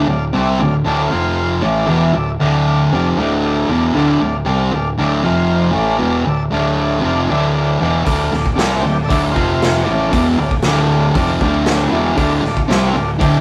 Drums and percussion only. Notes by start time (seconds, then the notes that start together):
8.06 kick, open hi-hat
8.33 snare
8.46 kick
8.59 snare, open hi-hat
9.10 kick, open hi-hat
9.36 kick
9.62 snare, open hi-hat
10.13 kick, open hi-hat
10.51 kick
10.62 snare, open hi-hat
11.15 kick, open hi-hat
11.41 kick
11.66 snare, open hi-hat
12.17 kick, open hi-hat
12.45 snare
12.57 kick
12.70 snare, open hi-hat
13.21 kick, open hi-hat